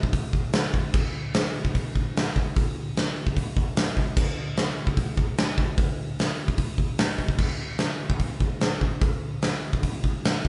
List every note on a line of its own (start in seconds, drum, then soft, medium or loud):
0.03 kick medium
0.13 kick loud
0.13 open hi-hat medium
0.33 kick medium
0.53 snare loud
0.53 open hi-hat medium
0.74 kick medium
0.94 kick loud
0.94 crash medium
1.34 snare loud
1.34 open hi-hat medium
1.65 kick medium
1.75 kick medium
1.75 open hi-hat medium
1.96 kick medium
2.17 snare loud
2.17 open hi-hat medium
2.36 kick medium
2.56 kick loud
2.56 open hi-hat medium
2.97 snare loud
2.97 open hi-hat medium
3.27 kick medium
3.37 kick medium
3.37 open hi-hat medium
3.57 kick medium
3.77 snare loud
3.77 open hi-hat medium
3.97 kick medium
4.17 kick loud
4.17 crash medium
4.57 snare loud
4.57 open hi-hat medium
4.87 kick medium
4.97 kick loud
4.97 open hi-hat medium
5.17 kick medium
5.38 snare loud
5.38 open hi-hat medium
5.58 kick medium
5.78 kick loud
5.78 open hi-hat medium
6.19 snare medium
6.19 open hi-hat medium
6.48 kick medium
6.58 kick medium
6.58 open hi-hat medium
6.78 kick medium
6.98 snare loud
6.98 open hi-hat medium
7.19 kick medium
7.28 kick medium
7.38 kick medium
7.38 crash loud
7.78 snare medium
7.78 open hi-hat soft
8.10 kick medium
8.19 kick medium
8.19 open hi-hat soft
8.40 kick medium
8.61 snare loud
8.61 open hi-hat soft
8.81 kick medium
9.01 kick loud
9.01 open hi-hat soft
9.42 snare medium
9.42 open hi-hat medium
9.73 kick medium
9.83 kick medium
9.83 open hi-hat medium
10.04 kick medium
10.25 snare loud
10.25 open hi-hat medium
10.45 kick medium